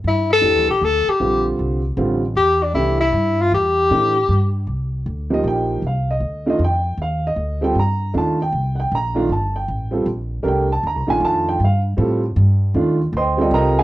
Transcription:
0.04 0.42 G2 medium
0.04 0.30 E4 medium
0.33 0.67 A4 loud
0.41 0.56 E2 medium
0.41 0.65 E3 medium
0.41 0.65 A3 medium
0.41 0.65 D4 medium
0.41 0.65 G4 medium
0.56 0.68 D2 medium
0.69 0.81 A#1 medium
0.69 0.86 G4 medium
0.82 1.05 D2 medium
0.82 1.11 A4 medium
1.07 1.47 G4 medium
1.07 muted upright bass stroke soft
1.20 1.58 A#1 medium
1.20 1.79 D3 medium
1.20 1.79 G3 medium
1.20 1.79 C4 medium
1.20 1.79 F4 medium
1.59 1.96 C2 medium
1.97 2.35 A1 medium
1.97 2.20 D3 medium
1.97 2.20 G3 medium
1.97 2.20 C4 medium
1.97 2.21 F4 medium
2.35 2.73 E2 medium
2.35 2.64 G4 loud
2.63 2.74 D4 medium
2.74 3.12 C2 medium
2.74 2.97 E3 medium
2.74 2.97 A3 medium
2.74 2.98 D4 medium
2.74 2.98 E4 medium
2.74 2.98 G4 medium
3.01 3.43 E4 medium
3.13 3.50 G2 medium
3.41 3.53 F4 medium
3.52 3.89 E2 medium
3.52 4.51 G4 medium
3.90 4.28 A2 medium
3.90 4.13 E3 medium
3.90 4.13 A3 medium
3.90 4.13 D4 medium
3.90 4.14 G4 medium
4.29 4.66 G2 medium
4.67 5.05 C2 medium
5.06 5.43 D2 medium
5.30 5.80 F3 medium
5.30 5.80 A#3 medium
5.30 5.80 D#4 medium
5.30 5.80 G4 medium
5.30 5.46 D#5 medium
5.44 5.81 A#1 medium
5.44 5.82 G5 medium
5.82 6.20 C2 medium
5.87 6.09 F5 medium
6.11 6.48 D#5 medium
6.20 6.58 D2 medium
6.46 6.58 D#3 medium
6.46 6.58 A3 medium
6.46 6.59 D4 medium
6.46 6.59 F4 medium
6.46 6.61 D#5 medium
6.59 6.97 F2 medium
6.64 6.98 G5 medium
6.97 7.35 D#2 medium
7.02 7.24 F5 medium
7.27 7.74 D#5 medium
7.36 7.74 D2 medium
7.61 7.74 G3 medium
7.61 7.74 C4 medium
7.61 7.74 F4 medium
7.61 7.74 A4 medium
7.61 7.76 G5 medium
7.75 8.13 G2 medium
7.79 8.13 A#5 medium
8.13 8.51 D#2 medium
8.13 8.36 D#3 medium
8.13 8.36 A3 medium
8.13 8.36 D4 medium
8.13 8.37 F4 medium
8.18 8.40 A5 medium
8.42 8.78 G5 medium
8.52 8.90 C2 medium
8.75 8.77 F#5 medium
8.80 8.92 G5 medium
8.92 9.29 A#1 medium
8.92 9.29 A#5 loud
9.15 9.27 D#3 medium
9.15 9.28 A3 medium
9.15 9.28 D4 medium
9.15 9.28 F4 medium
9.29 9.67 G1 medium
9.29 9.55 A5 medium
9.56 10.03 G5 medium
9.68 10.05 A1 medium
9.91 10.04 G3 medium
9.91 10.04 C4 medium
9.91 10.05 F4 medium
9.91 10.05 A4 medium
10.06 10.43 A#1 medium
10.43 10.82 C2 medium
10.43 10.66 A3 medium
10.43 10.66 D4 medium
10.43 10.66 G4 medium
10.43 10.66 A#4 medium
10.48 10.70 G5 medium
10.72 10.84 A5 medium
10.83 10.95 D2 medium
10.83 11.09 A#5 medium
10.95 11.08 C2 medium
11.07 11.20 A#1 medium
11.07 11.56 D#3 medium
11.07 11.56 A3 medium
11.07 11.57 D4 medium
11.07 11.57 F4 medium
11.07 11.22 G#5 medium
11.20 11.58 F2 medium
11.25 11.47 A5 loud
11.49 11.60 G5 medium
11.60 11.97 G2 medium
11.64 11.78 F5 medium
11.97 12.35 A2 medium
11.97 12.20 G3 medium
11.97 12.20 C4 medium
11.97 12.20 F4 medium
11.97 12.21 A4 medium
12.36 12.73 G2 loud
12.74 13.11 D#2 medium
12.74 12.97 D#3 medium
12.74 12.97 A3 medium
12.74 12.97 D4 medium
12.74 12.97 F4 medium
13.13 13.50 D2 medium
13.17 13.39 C5 medium
13.17 13.39 D#5 medium
13.17 13.39 G5 medium
13.17 13.39 C6 medium
13.37 13.83 G3 medium
13.37 13.83 C4 medium
13.37 13.83 F4 medium
13.37 13.83 A4 medium
13.41 13.53 G4 medium
13.41 13.53 D5 medium
13.41 13.53 D#5 medium
13.41 13.52 G5 medium
13.51 13.83 C2 medium
13.51 13.77 A#4 medium
13.51 13.77 D#5 medium
13.51 13.77 G5 medium
13.51 13.77 A#5 loud
13.79 13.83 G#4 medium
13.79 13.83 D#5 medium
13.79 13.83 F5 medium
13.79 13.83 G#5 medium

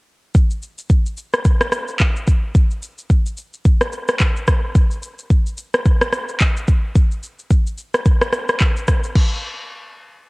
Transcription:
0.35 kick loud
0.35 shaker medium
0.50 shaker medium
0.62 shaker medium
0.78 shaker medium
0.90 kick medium
0.90 shaker medium
1.06 shaker medium
1.17 shaker medium
1.33 cross-stick medium
1.33 shaker soft
1.45 kick loud
1.45 shaker medium
1.61 cross-stick loud
1.61 shaker medium
1.72 cross-stick medium
1.72 shaker medium
1.88 shaker medium
2.00 kick medium
2.00 clap medium
2.00 shaker medium
2.16 shaker medium
2.27 kick medium
2.27 shaker medium
2.55 kick loud
2.55 shaker medium
2.71 shaker medium
2.83 shaker medium
2.98 shaker medium
3.10 kick medium
3.10 shaker medium
3.26 shaker medium
3.37 shaker medium
3.54 shaker soft
3.65 kick loud
3.65 shaker medium
3.81 cross-stick medium
3.81 shaker medium
3.92 shaker medium
4.08 cross-stick medium
4.08 shaker medium
4.20 kick medium
4.20 clap medium
4.20 shaker medium
4.36 shaker medium
4.47 kick medium
4.47 cross-stick medium
4.47 shaker medium
4.75 kick loud
4.75 shaker medium
4.91 shaker medium
5.03 shaker medium
5.19 shaker medium
5.30 kick medium
5.30 shaker medium
5.46 shaker medium
5.58 shaker medium
5.74 cross-stick medium
5.74 shaker soft
5.85 kick loud
5.85 shaker medium
6.01 cross-stick loud
6.01 shaker medium
6.12 cross-stick medium
6.12 shaker medium
6.28 shaker medium
6.40 kick medium
6.40 clap medium
6.40 shaker medium
6.57 shaker medium
6.68 kick medium
6.68 shaker medium
6.95 kick loud
6.95 shaker medium
7.11 shaker medium
7.23 shaker medium
7.39 shaker medium
7.50 kick medium
7.50 shaker medium
7.67 shaker medium
7.78 shaker medium
7.94 cross-stick medium
7.94 shaker soft
8.05 kick loud
8.05 shaker medium
8.21 cross-stick loud
8.21 shaker medium
8.33 cross-stick medium
8.33 shaker medium
8.49 cross-stick medium
8.49 shaker medium
8.60 kick medium
8.60 clap medium
8.60 shaker medium
8.77 shaker medium
8.88 kick medium
8.88 cross-stick medium
8.88 shaker loud
9.04 shaker medium
9.16 kick loud
9.16 crash medium

